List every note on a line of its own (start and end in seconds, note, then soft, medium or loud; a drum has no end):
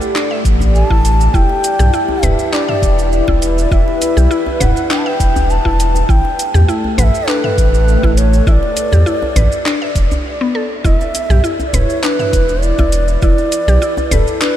0.00 1.34 A3 medium
0.00 10.25 G4 medium
0.00 2.69 A4 medium
0.00 0.14 B4 loud
0.00 10.25 D5 medium
0.00 shaker soft
0.15 0.29 D4 medium
0.15 clap medium
0.15 shaker soft
0.31 0.44 E5 medium
0.45 0.83 A1 medium
0.45 kick medium
0.45 closed hi-hat medium
0.45 shaker medium
0.60 djembe bass medium
0.60 shaker soft
0.75 0.87 G#5 loud
0.75 shaker soft
0.87 1.28 A1 medium
0.87 1.33 E4 loud
0.87 1.35 A5 loud
0.87 kick medium
1.05 closed hi-hat medium
1.05 shaker medium
1.21 djembe tone medium
1.21 shaker soft
1.34 1.45 E1 medium
1.34 6.94 E4 medium
1.34 1.49 E4 loud
1.34 2.25 G5 loud
1.34 kick loud
1.34 shaker soft
1.49 djembe slap soft
1.64 closed hi-hat medium
1.64 shaker medium
1.79 1.89 B1 loud
1.79 1.93 G4 medium
1.79 mid tom medium
1.79 djembe tone medium
1.79 shaker soft
1.88 8.00 B4 medium
1.93 2.08 E4 medium
1.93 shaker soft
2.09 djembe tone medium
2.23 2.34 E1 loud
2.23 2.51 B4 loud
2.23 2.54 E5 medium
2.23 closed hi-hat medium
2.23 mid tom medium
2.23 djembe bass medium
2.23 shaker medium
2.39 shaker soft
2.53 2.67 D4 loud
2.53 3.12 D5 loud
2.53 clap medium
2.53 shaker soft
2.69 2.82 E5 medium
2.69 mid tom medium
2.82 3.21 E1 medium
2.82 kick loud
2.82 closed hi-hat medium
2.82 shaker medium
2.99 shaker soft
3.13 3.74 D5 medium
3.13 shaker soft
3.28 3.65 E1 medium
3.28 3.70 E4 loud
3.28 kick medium
3.28 djembe slap medium
3.28 djembe tone soft
3.28 djembe bass medium
3.42 closed hi-hat medium
3.42 shaker medium
3.58 shaker soft
3.71 3.83 E1 medium
3.71 3.87 E4 loud
3.71 4.63 E5 loud
3.71 kick loud
3.71 shaker soft
3.88 djembe slap soft
4.02 closed hi-hat medium
4.02 djembe tone soft
4.02 shaker medium
4.17 4.27 B1 loud
4.17 4.30 G4 medium
4.17 djembe tone medium
4.17 shaker soft
4.31 4.46 E4 loud
4.31 shaker soft
4.46 djembe tone medium
4.60 4.72 E1 medium
4.60 4.89 B4 loud
4.60 4.91 F#5 loud
4.60 closed hi-hat medium
4.60 mid tom medium
4.60 djembe bass medium
4.60 shaker medium
4.77 shaker soft
4.90 5.04 D4 loud
4.90 5.00 G5 medium
4.90 clap medium
4.90 shaker soft
4.98 5.08 A5 medium
5.06 5.19 E5 medium
5.06 5.52 G5 loud
5.20 5.59 E1 medium
5.20 kick loud
5.20 closed hi-hat medium
5.20 shaker medium
5.36 djembe bass medium
5.36 shaker soft
5.50 6.11 A5 loud
5.50 shaker soft
5.65 6.03 E1 medium
5.65 6.08 E4 loud
5.65 kick medium
5.80 closed hi-hat medium
5.80 shaker medium
5.95 djembe tone medium
5.95 shaker soft
6.09 6.21 A1 medium
6.09 10.25 A3 medium
6.09 6.24 E4 loud
6.09 6.72 G5 loud
6.09 kick loud
6.09 shaker soft
6.25 djembe slap medium
6.37 10.25 A4 medium
6.37 closed hi-hat medium
6.37 shaker medium
6.54 6.65 E2 loud
6.54 6.68 G4 medium
6.54 mid tom medium
6.54 djembe tone medium
6.54 shaker soft
6.68 6.84 E4 loud
6.68 shaker soft
6.84 djembe tone medium
6.98 7.10 A1 loud
6.98 7.26 B4 loud
6.98 7.04 F#5 loud
6.98 closed hi-hat medium
6.98 mid tom medium
6.98 djembe bass medium
6.98 shaker medium
7.04 7.30 E5 loud
7.15 shaker soft
7.28 7.42 D4 loud
7.28 8.19 B4 loud
7.28 clap medium
7.28 shaker soft
7.44 7.57 E5 medium
7.44 mid tom medium
7.58 7.96 A1 medium
7.58 kick medium
7.58 closed hi-hat medium
7.58 shaker medium
7.74 shaker soft
7.88 shaker soft
8.02 8.41 A1 medium
8.02 8.46 E4 loud
8.02 kick medium
8.02 djembe slap medium
8.02 djembe tone soft
8.02 djembe bass medium
8.17 8.49 C#5 medium
8.17 closed hi-hat medium
8.17 shaker medium
8.33 shaker soft
8.47 8.58 A1 medium
8.47 8.62 E4 loud
8.47 8.53 E5 loud
8.47 kick loud
8.47 shaker soft
8.52 10.25 D5 loud
8.63 djembe slap medium
8.77 closed hi-hat medium
8.77 djembe tone soft
8.77 shaker medium
8.92 9.02 E2 loud
8.92 9.06 G4 medium
8.92 mid tom medium
8.92 djembe tone medium
8.92 shaker soft
9.06 9.21 E4 medium
9.06 shaker soft
9.22 djembe tone medium
9.36 9.47 A1 loud
9.36 9.64 B4 loud
9.36 closed hi-hat medium
9.36 mid tom medium
9.36 djembe bass medium
9.36 shaker medium
9.52 shaker soft
9.66 9.80 D4 loud
9.66 clap medium
9.66 shaker soft
9.82 9.95 E5 medium
9.95 10.07 E1 loud
9.95 kick loud
9.95 closed hi-hat medium
9.95 shaker medium
10.11 djembe bass medium
10.11 shaker soft
10.41 10.49 B3 medium
10.55 10.70 A4 medium
10.84 10.96 E1 medium
10.84 10.99 E4 loud
10.84 14.57 E4 medium
10.84 10.97 D#5 loud
10.84 kick loud
10.84 shaker soft
10.97 11.63 E5 loud
11.01 djembe slap medium
11.01 shaker soft
11.07 14.57 B4 medium
11.14 closed hi-hat medium
11.14 djembe tone soft
11.14 shaker medium
11.30 11.40 B1 loud
11.30 11.43 G4 medium
11.30 mid tom medium
11.30 djembe tone medium
11.30 shaker soft
11.44 11.59 E4 medium
11.44 shaker soft
11.60 djembe tone medium
11.60 shaker soft
11.67 11.75 D5 medium
11.73 11.85 E1 medium
11.73 12.02 B4 medium
11.73 12.05 C#5 medium
11.73 closed hi-hat medium
11.73 mid tom medium
11.73 djembe bass medium
11.73 shaker medium
11.90 shaker soft
12.03 12.18 D4 loud
12.03 12.64 B4 loud
12.03 clap medium
12.03 shaker soft
12.19 12.32 E5 medium
12.19 mid tom medium
12.19 shaker soft
12.33 12.72 E1 medium
12.33 kick loud
12.33 closed hi-hat medium
12.33 shaker medium
12.49 djembe tone soft
12.49 shaker soft
12.63 13.22 D5 loud
12.63 shaker soft
12.78 13.16 E1 medium
12.78 13.21 E4 loud
12.78 kick medium
12.78 djembe slap medium
12.78 djembe tone soft
12.78 djembe bass medium
12.78 shaker soft
12.92 closed hi-hat medium
12.92 shaker medium
13.08 shaker soft
13.22 13.34 E1 medium
13.22 13.37 E4 loud
13.22 14.07 D5 loud
13.22 kick loud
13.22 shaker soft
13.38 djembe slap soft
13.38 shaker soft
13.52 closed hi-hat medium
13.52 shaker medium
13.67 13.78 B1 loud
13.67 13.81 G4 loud
13.67 djembe tone medium
13.67 shaker soft
13.82 13.97 E4 medium
13.82 shaker soft
13.97 djembe tone medium
13.97 shaker soft
14.11 14.23 E1 loud
14.11 14.43 A4 loud
14.11 14.40 B4 medium
14.11 closed hi-hat medium
14.11 mid tom medium
14.11 djembe bass medium
14.11 shaker medium
14.27 shaker soft
14.41 14.55 D4 medium
14.41 14.57 B4 loud
14.41 clap medium
14.41 shaker soft